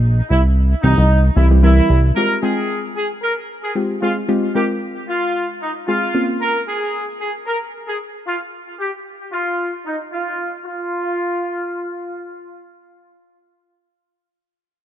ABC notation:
X:1
M:4/4
L:1/16
Q:1/4=113
K:Fm
V:1 name="Horn section"
z2 =E z3 _E3 z =E z E3 z | B2 A3 z A z B z2 A z2 F z | z2 G z3 F3 z E z F3 z | B2 A3 z A z B z2 A z2 F z |
z2 G z3 F3 z E z F3 z | F12 z4 | z16 |]
V:2 name="Synth pluck"
z6 [=E,G,CG]3 z [E,G,C=EG] [E,G,CEG] [E,G,CEB]4 | [A,CFG] z [A,CFg]6 z4 [A,CFG] z [A,CFA] z | [A,CFG] z [A,CFB]6 z4 [A,CFA] z [B,CDF]2 | z16 |
z16 | z16 | z16 |]
V:3 name="Analog synth bass" clef=bass
B,,,2 C,,4 C,, C,,3 C,,4 C,,2 | z16 | z16 | z16 |
z16 | z16 | z16 |]